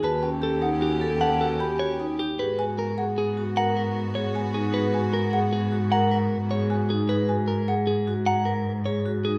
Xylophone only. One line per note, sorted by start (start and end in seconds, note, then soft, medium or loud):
0.04 0.29 A5 medium
0.23 0.48 G5 medium
0.62 0.88 F#5 medium
1.21 1.46 A5 medium
1.60 1.86 B5 medium
2.00 2.25 G5 medium
2.59 2.84 G#5 medium
2.98 3.23 F#5 medium
3.57 3.82 A#5 medium
4.35 4.60 G#5 medium
4.94 5.19 G#5 medium
5.33 5.58 F#5 medium
5.92 6.17 A#5 medium
6.70 6.96 G#5 medium
7.29 7.54 G#5 medium
7.68 7.94 F#5 medium
8.27 8.52 A#5 medium